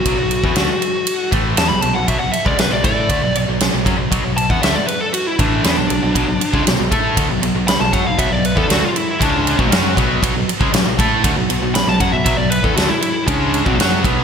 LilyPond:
<<
  \new Staff \with { instrumentName = "Lead electric guitar" } { \time 4/4 \key b \minor \tempo 4 = 118 fis'2~ fis'8 r8 a''16 b''16 a''16 fis''16 | e''16 fis''16 e''16 d''16 b'16 d''16 d''4 r4. | r8 a''16 fis''16 e''16 d''16 b'16 a'16 fis'16 e'16 d'8 d'4~ | d'4 r2 b''16 a''16 fis''16 eis''16 |
e''16 d''16 b'16 a'16 fis'16 eis'16 e'8 d'4 r4 | r2. b''16 a''16 fis''16 e''16 | e''16 d''16 b'16 a'16 fis'16 e'16 e'8 d'4 r4 | }
  \new Staff \with { instrumentName = "Distorted electric guitar" } { \clef bass \time 4/4 \key b \minor <b, fis>16 <b, fis>8 <e b>16 <d a>16 r4 r16 <a, e a>8 <e b>16 <b, fis>16 <b, fis>16 <b, fis>16 | <b, fis>16 <b, fis>16 r16 <cis gis>16 <b, fis>16 <b, fis>16 <a e' a'>8 <d a>16 <b, fis>16 <b, fis>16 <b, fis>8 <b, fis>16 <fis cis'>16 <b, fis>16 | <b, fis>16 <b, fis>8 <e b>16 <d a>16 r4 r16 <a, e a>8 <e b>16 <b, fis>16 <b, fis>16 <b, fis>16 | <b, fis>16 <b, fis>16 r16 <cis gis>16 <b, fis>16 <b, fis>16 <a e' a'>8 <d a>16 <b, fis>16 <b, fis>16 <b, fis>8 <b, fis>16 <fis cis'>16 <b, fis>16 |
<b, fis>16 <b, fis>8 <e b>16 <d a>16 r8. <cis gis cis'>8. <b, fis>16 <fis cis' fis'>8 <b, fis b>8 | <b, fis>16 <b, fis>16 r16 <cis gis>16 <b, fis>16 <b, fis>16 <a e' a'>8 <d a>16 <b, fis>16 <b, fis>16 <b, fis>8 <b, fis>16 <fis cis'>16 <b, fis>16 | <b, fis>16 <b, fis>8 <e b>16 <d a>16 r8. <cis gis cis'>8. <b, fis>16 <fis cis' fis'>8 <b, fis b>8 | }
  \new Staff \with { instrumentName = "Distorted electric guitar" } { \clef bass \time 4/4 \key b \minor r1 | r1 | r1 | <b, fis>16 <b, fis>16 r16 <cis gis>16 <b, fis>16 <b, fis>16 <a e' a'>8 <d a>16 <b, fis>16 <b, fis>16 <b, fis>8 <b, fis>16 <fis cis'>16 <b, fis>16 |
<b, fis>16 <b, fis>8 <e b>16 <d a>16 r8. <cis gis cis'>8. <b, fis>16 <fis cis' fis'>8 <b, fis b>8 | <b, fis>16 <b, fis>16 r16 <cis gis>16 <b, fis>16 <b, fis>16 <a e' a'>8 <d a>16 <b, fis>16 <b, fis>16 <b, fis>8 <b, fis>16 <fis cis'>16 <b, fis>16 | <b, fis>16 <b, fis>8 <e b>16 <d a>16 r8. <cis gis cis'>8. <b, fis>16 <fis cis' fis'>8 <b, fis b>8 | }
  \new Staff \with { instrumentName = "Fingered electric bass" } { \clef bass \time 4/4 \key b \minor b,,16 b,,8 e,16 d,16 r4 r16 a,,8 e,16 b,,16 b,,16 b,,16 | b,,16 b,,16 r16 cis,16 b,,16 b,,16 a,8 d,16 b,,16 b,,16 b,,8 b,,16 fis,16 b,,16 | b,,16 b,,8 e,16 d,16 r4 r16 a,,8 e,16 b,,16 b,,16 b,,16 | b,,16 b,,16 r16 cis,16 b,,16 b,,16 a,8 d,16 b,,16 b,,16 b,,8 b,,16 fis,16 b,,16 |
b,,16 b,,8 e,16 d,16 r8. cis,8. b,,16 fis,8 b,,8 | b,,16 b,,16 r16 cis,16 b,,16 b,,16 a,8 d,16 b,,16 b,,16 b,,8 b,,16 fis,16 b,,16 | b,,16 b,,8 e,16 d,16 r8. cis,8. b,,16 fis,8 b,,8 | }
  \new DrumStaff \with { instrumentName = "Drums" } \drummode { \time 4/4 <bd cymr>8 cymr16 bd16 <cymr sn>8 cymr8 cymr8 <bd cymr>8 <cymr sn>8 cymr8 | <bd cymr>8 cymr16 bd16 <cymr sn>8 <bd cymr>8 <bd cymr>8 cymr8 <cymr sn>8 <bd cymr>8 | <bd cymr>8 cymr16 bd16 <cymr sn>8 cymr8 cymr8 <bd cymr>8 <cymr sn>8 cymr8 | <bd cymr>8 cymr16 bd16 <cymr sn>8 <bd cymr>8 <bd cymr>8 cymr8 <cymr sn>8 <bd cymr>8 |
<bd cymr>8 cymr16 bd16 <cymr sn>8 cymr8 <bd cymr>8 cymr16 bd16 <cymr sn>8 <bd cymr>8 | <bd cymr>8 cymr16 bd16 <cymr sn>8 <bd cymr>8 <bd cymr>8 cymr8 <cymr sn>8 <bd cymr>8 | <bd cymr>8 cymr16 bd16 <cymr sn>8 cymr8 <bd cymr>8 cymr16 bd16 <cymr sn>8 <bd cymr>8 | }
>>